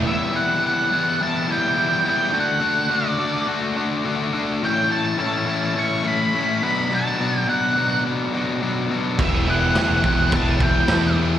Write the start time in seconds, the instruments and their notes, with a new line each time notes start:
0.04 overdriven electric guitar E3 G3 B3 E4, lead electric guitar E5
0.32 overdriven electric guitar E3 G3 B3 E4, lead electric guitar F#5
0.62 overdriven electric guitar E3 G3 B3 E4
0.67 lead electric guitar F#5
0.92 overdriven electric guitar E3 G3 B3 E4
1.21 overdriven electric guitar E3 G3 B3 E4, lead electric guitar A5
1.48 overdriven electric guitar E3 G3 B3 E4, lead electric guitar G5
1.77 overdriven electric guitar E3 G3 B3 E4
2.04 overdriven electric guitar E3 G3 B3 E4
2.10 lead electric guitar G5
2.33 overdriven electric guitar D3 A3 D4 F#4
2.40 lead electric guitar F#5
2.60 overdriven electric guitar D3 A3 D4 F#4
2.89 overdriven electric guitar D3 A3 D4 F#4
2.96 lead electric guitar D5
3.18 overdriven electric guitar D3 A3 D4 F#4
3.47 overdriven electric guitar D3 A3 D4 F#4
3.76 overdriven electric guitar D3 A3 D4 F#4
4.05 overdriven electric guitar D3 A3 D4 F#4
4.33 overdriven electric guitar D3 A3 D4 F#4
4.62 overdriven electric guitar A2 E3 A3 C#4 E4, lead electric guitar G5
4.89 overdriven electric guitar A2 E3 A3 C#4 E4, lead electric guitar A5
5.17 overdriven electric guitar A2 E3 A3 C#4 E4, lead electric guitar A5
5.46 overdriven electric guitar A2 E3 A3 C#4 E4
5.75 overdriven electric guitar A2 E3 A3 C#4 E4
5.79 lead electric guitar C#6
6.03 overdriven electric guitar A2 E3 A3 C#4 E4
6.08 lead electric guitar B5
6.34 overdriven electric guitar A2 E3 A3 C#4 E4
6.62 overdriven electric guitar B2 F#3 B3 D4 F#4, lead electric guitar B5
6.91 overdriven electric guitar B2 F#3 B3 D4 F#4, lead electric guitar A5
7.20 overdriven electric guitar B2 F#3 B3 D4 F#4
7.39 lead electric guitar G5
7.47 overdriven electric guitar B2 F#3 B3 D4 F#4, lead electric guitar F#5
7.77 overdriven electric guitar B2 F#3 B3 D4 F#4
8.05 overdriven electric guitar B2 F#3 B3 D4 F#4
8.33 overdriven electric guitar B2 F#3 B3 D4 F#4
8.61 overdriven electric guitar B2 F#3 B3 D4 F#4
8.90 overdriven electric guitar B2 F#3 B3 D4 F#4
9.19 picked electric bass E1, distorted electric guitar E2 B2 E3, overdriven electric guitar E3 B3 E4 G4, lead electric guitar E5, kick, crash
9.47 distorted electric guitar E2 B2 E3, overdriven electric guitar E3 B3 E4 G4, lead electric guitar F#5
9.75 distorted electric guitar E2 B2 E3, overdriven electric guitar E3 B3 E4 G4, lead electric guitar F#5, snare, crash
9.90 picked electric bass E1
10.03 picked electric bass E1, distorted electric guitar E2 B2 E3, overdriven electric guitar E3 B3 E4 G4, kick
10.32 picked electric bass E1, distorted electric guitar E2 B2 E3, overdriven electric guitar E3 B3 E4 G4, lead electric guitar A5, kick, crash
10.60 distorted electric guitar E2 B2 E3, overdriven electric guitar E3 B3 E4 G4, lead electric guitar G5, kick
10.88 distorted electric guitar E2 B2 E3, picked electric bass E2, overdriven electric guitar E3 B3 E4 G4, snare, crash
11.17 distorted electric guitar E2 B2 E3, overdriven electric guitar E3 B3 E4 G4